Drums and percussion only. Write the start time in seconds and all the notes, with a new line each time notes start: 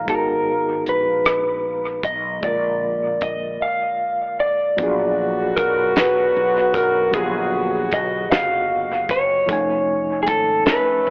0.08 kick, closed hi-hat
0.86 closed hi-hat
1.25 cross-stick, closed hi-hat
2.03 kick, closed hi-hat
2.43 kick, closed hi-hat
3.21 kick, closed hi-hat
4.78 kick, closed hi-hat
5.57 kick, closed hi-hat
5.96 snare, closed hi-hat
6.74 kick, closed hi-hat
7.13 kick, closed hi-hat
7.92 kick, closed hi-hat
8.31 snare, closed hi-hat
9.09 kick, closed hi-hat
9.49 kick, closed hi-hat
10.27 kick, closed hi-hat
10.66 snare, closed hi-hat